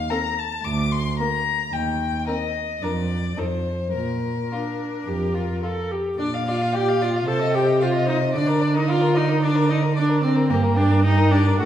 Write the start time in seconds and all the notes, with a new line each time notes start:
Already playing: F5
0.10 C4 A4 A#5
0.39 A5
0.64 D2 D6
0.92 C6
1.19 A#3 A#4 A#5
1.72 D#2 G5
2.26 C4 A#4 D#5
2.81 F2 D4 A#4 D5
3.37 F2 D#4 A4 C5
3.94 A#2 A#4
4.52 D4 F4
5.07 F2 G4
5.35 F4
5.63 F4 A4
5.91 G4
6.18 A#2 D4 D5
6.34 F5
6.46 F4 D5 F5
6.62 F5
6.73 G4 D5 G5
6.88 F5
7.01 F4 D5 F5
7.16 F5
7.26 C3 A4 C5 A5
7.40 D#5
7.53 G4 C5 G5
7.67 D#5
7.80 F4 C5 F5
7.92 D#5
8.06 D#4 C5 D#5
8.21 D#5
8.33 D3 D4 D5
8.48 A#4
8.61 D5
8.74 D#4 A#4 D#5
8.88 F4 D5 F5
9.01 A#4
9.15 D#4 D5 D#5
9.29 A#4
9.42 D4 D5
9.55 A#4
9.69 D#4 D5 D#5
9.83 A#4
9.95 D4 D5
10.09 A#4
10.22 C4 C5 D5
10.36 A#4
10.49 G2 A#3 G4 A#4
10.63 A#4
10.76 D4 G4 D5
10.90 A#4
11.04 D#4 G4 D#5
11.17 A#4
11.31 D4 G4 D5
11.46 A#4
11.58 A2 F#4 A4 F#5